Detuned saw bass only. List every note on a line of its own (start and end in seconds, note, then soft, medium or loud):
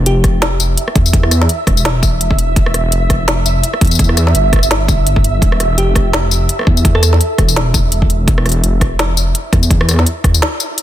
0.06 0.76 F1 loud
0.95 1.48 E2 medium
1.67 2.19 E1 loud
2.20 2.55 E1 loud
2.56 2.91 E1 medium
2.92 3.62 F1 loud
3.81 4.34 E2 loud
4.35 5.41 G1 medium
5.42 5.76 E1 medium
5.78 6.48 F1 loud
6.67 7.19 E2 medium
7.38 7.91 E1 loud
7.92 8.26 E1 loud
8.28 8.62 E1 loud
8.63 9.33 F1 medium
9.53 10.05 E2 loud
10.24 10.42 E2 loud